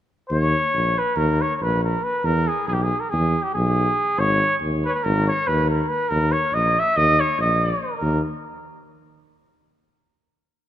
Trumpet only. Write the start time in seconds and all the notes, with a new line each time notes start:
0.30 C#5
0.98 B4
1.17 A#4
1.42 C#5
1.56 C#5
1.62 B4
1.84 A#4
2.04 B4
2.25 A#4
2.48 G#4
2.68 G#4
2.73 G4
2.82 G#4
3.00 A#4
3.10 G#4
3.43 G4
3.54 G#4
4.19 C#5
4.85 B4 C#5
4.93 B4
5.04 A#4
5.28 C#5
5.47 B4
5.70 A#4
5.89 B4
6.09 A#4
6.32 C#5
6.54 D#5
6.79 E5
6.97 D#5
7.20 C#5
7.41 D#5
7.98 A#4